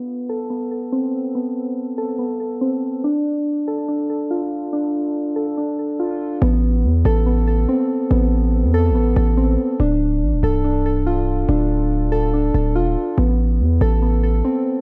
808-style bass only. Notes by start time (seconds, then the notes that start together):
6.42 A1
6.84 E2
7.05 A1
8.11 A1
8.64 E2
8.90 A1
9.16 A1
9.80 D1
10.22 A1
10.33 D1
10.43 C1
11.49 D1
12.54 D1
12.75 E1
12.86 D1
13.18 A1
13.60 E2
13.81 A1